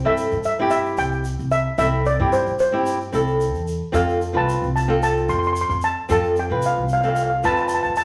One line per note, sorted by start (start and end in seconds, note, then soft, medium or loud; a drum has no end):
0.04 0.30 G2 medium
0.04 0.36 C4 medium
0.04 0.37 E4 medium
0.04 0.37 A4 medium
0.04 0.44 E5 medium
0.17 shaker medium
0.31 0.95 G2 medium
0.31 shaker soft
0.43 0.69 E5 medium
0.43 shaker medium
0.59 1.23 C4 medium
0.59 1.23 E4 medium
0.59 1.24 G4 medium
0.70 0.83 E5 medium
0.70 shaker medium
0.86 shaker soft
0.97 1.37 C2 medium
0.97 1.53 G5 loud
0.97 shaker medium
1.12 shaker soft
1.24 shaker medium
1.39 1.65 C2 medium
1.39 shaker soft
1.51 1.77 E5 medium
1.51 shaker medium
1.78 2.17 C2 loud
1.78 2.02 C4 medium
1.78 2.03 E4 medium
1.78 2.04 A4 medium
1.78 2.04 E5 loud
1.78 shaker medium
2.06 2.34 D5 medium
2.06 shaker medium
2.19 2.45 G2 medium
2.19 2.51 C4 medium
2.19 2.52 E4 medium
2.19 2.52 G4 medium
2.33 2.59 C5 medium
2.33 shaker medium
2.46 3.10 G2 medium
2.46 shaker soft
2.59 3.63 C5 medium
2.59 shaker medium
2.72 2.97 C4 medium
2.72 2.97 E4 medium
2.72 2.98 G4 medium
2.86 shaker medium
3.01 shaker soft
3.12 3.54 C2 medium
3.12 3.61 C4 medium
3.12 3.62 E4 medium
3.12 3.63 A4 medium
3.12 shaker medium
3.27 shaker soft
3.41 shaker medium
3.54 3.80 E2 medium
3.54 shaker soft
3.67 shaker medium
3.92 4.33 F2 loud
3.92 4.17 C4 medium
3.92 4.18 F4 medium
3.92 4.18 A4 medium
3.92 4.37 F5 medium
3.92 shaker medium
4.08 shaker soft
4.21 shaker medium
4.33 4.61 C2 medium
4.33 4.66 C4 medium
4.33 4.67 F4 medium
4.33 4.67 B4 medium
4.33 4.74 A5 medium
4.49 shaker medium
4.62 5.25 C2 medium
4.62 shaker soft
4.76 4.88 A5 medium
4.76 shaker medium
4.88 5.53 C4 medium
4.88 5.53 F4 medium
4.88 5.53 A4 medium
5.03 5.30 A5 medium
5.03 shaker medium
5.29 5.68 F2 medium
5.29 5.37 C6 medium
5.29 shaker medium
5.39 5.46 C6 medium
5.43 5.52 C6 medium
5.43 shaker soft
5.53 5.60 C6 medium
5.53 shaker medium
5.61 5.68 C6 medium
5.69 5.95 F2 medium
5.69 5.76 C6 medium
5.69 shaker soft
5.82 6.11 A5 medium
5.82 shaker medium
6.09 6.49 F2 loud
6.09 6.34 C4 medium
6.09 6.34 F4 medium
6.09 6.35 A4 medium
6.09 6.39 A5 medium
6.09 shaker medium
6.24 shaker soft
6.36 6.66 G5 medium
6.36 shaker medium
6.50 6.76 C2 medium
6.50 6.82 C4 soft
6.50 6.83 F4 medium
6.50 6.83 B4 medium
6.62 6.92 F5 medium
6.62 shaker medium
6.78 7.41 C2 medium
6.89 shaker medium
6.93 7.00 F5 medium
7.01 7.28 C4 medium
7.01 7.29 F4 medium
7.01 7.29 A4 medium
7.01 7.07 F5 medium
7.01 shaker soft
7.09 7.14 F5 medium
7.15 7.21 F5 medium
7.15 shaker medium
7.23 7.29 F5 medium
7.30 7.37 F5 medium
7.43 7.83 F2 medium
7.43 7.93 C4 medium
7.43 7.93 F4 medium
7.43 7.93 B4 medium
7.43 7.52 A5 loud
7.43 shaker medium
7.54 7.59 A5 medium
7.54 shaker soft
7.61 7.67 A5 medium
7.68 7.73 A5 medium
7.68 shaker loud
7.75 7.82 A5 medium
7.83 8.04 F2 medium
7.83 7.91 A5 medium
7.83 shaker soft
7.96 8.04 A5 medium
7.96 shaker medium